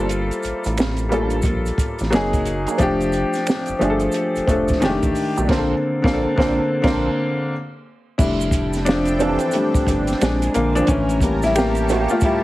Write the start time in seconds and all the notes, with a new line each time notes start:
Already playing: G1 G3 A#3 E4 F4 A4 C5
0.00 F3
0.09 closed hi-hat, maracas
0.31 closed hi-hat, maracas
0.43 A1, closed hi-hat, maracas
0.64 A1, closed hi-hat, maracas
0.78 finger snap, muted hollow-body jazz guitar stroke, snare, maracas
0.97 closed hi-hat, maracas
1.09 F3 G3 A#3 D4 F4, closed hi-hat
1.14 A4
1.30 closed hi-hat, maracas
1.42 A#1, kick, closed hi-hat, maracas
1.66 closed hi-hat, maracas
1.78 kick, closed hi-hat, maracas
1.99 A1, snare, closed hi-hat, maracas
2.11 F#1 F#3 A#3 D#4, finger snap, snare, maracas
2.15 G#4
2.33 kick, closed hi-hat, maracas
2.45 closed hi-hat, maracas
2.67 F#3 A#3 D#4 G#4, closed hi-hat, maracas
2.78 F1 F3 A3 D4, kick, closed hi-hat, maracas
2.82 G4
3.01 closed hi-hat, maracas
3.12 closed hi-hat, maracas
3.33 snare, closed hi-hat, maracas
3.47 finger snap, muted hollow-body jazz guitar stroke, snare, maracas
3.66 G1, closed hi-hat, maracas
3.79 G1 F3 A3 D4 G4, closed hi-hat
3.83 G#4
3.90 A4
3.99 closed hi-hat, maracas
4.12 closed hi-hat, maracas
4.36 F1, closed hi-hat, maracas
4.47 F1 F3 A3 D4, kick, closed hi-hat, maracas
4.51 A4
4.68 kick, closed hi-hat, maracas
4.72 snare
4.80 F1 D#3 G#3 D4, finger snap, snare, maracas
4.84 A3 G4
5.03 A1, kick, closed hi-hat, maracas
5.15 open hi-hat, maracas
5.36 B1 D#3 A3 D4 G4, closed hi-hat, maracas
5.47 A#1 D3 F3 A#3 C4 D4, kick, crash
5.51 A4, snare
5.58 A4
6.02 A#1 D3 F3 A#3 C4 D4, kick
6.06 A4, snare
6.13 A4
6.36 A#1 D3 F3 A#3 C4 D4, kick
6.40 A4, snare
6.82 A#1 D3 F3 A#3 C4 D4, kick, crash
6.86 A4, snare
8.18 F1 G3 A3 D4 E4 G4 A4 G5, kick, crash, maracas
8.40 closed hi-hat, maracas
8.51 kick, closed hi-hat, maracas
8.73 snare, closed hi-hat, maracas
8.85 F3 D4, finger snap, muted hollow-body jazz guitar stroke, snare, maracas
9.05 closed hi-hat, maracas
9.19 E3 G3 C4 D4 F4 A4, closed hi-hat, maracas
9.39 closed hi-hat, maracas
9.51 G3 A3 D4, closed hi-hat, maracas
9.74 kick, closed hi-hat, maracas
9.87 G1, kick, closed hi-hat, maracas
10.07 snare, closed hi-hat, maracas
10.21 A#1 G#3 C4 D4 A#4 C5 G#5, finger snap, snare, maracas
10.42 closed hi-hat, maracas
10.54 A#1 D3 A#3, closed hi-hat, maracas
10.75 F3 C4 D4 G#4, closed hi-hat, maracas
10.87 A1 E3 C#4 G4 C#5 A5, kick, closed hi-hat, maracas
11.09 closed hi-hat, maracas
11.21 G3 A#3 C#4, kick, closed hi-hat, maracas
11.42 G3 E4, snare, closed hi-hat, maracas
11.55 A#3 G4, finger snap, muted hollow-body jazz guitar stroke, snare, maracas
11.75 closed hi-hat, maracas
11.89 E3 A#3 C#4 G4, closed hi-hat, maracas
12.08 F4, closed hi-hat, maracas
12.12 A3
12.21 E4, kick, closed hi-hat, maracas
12.25 G3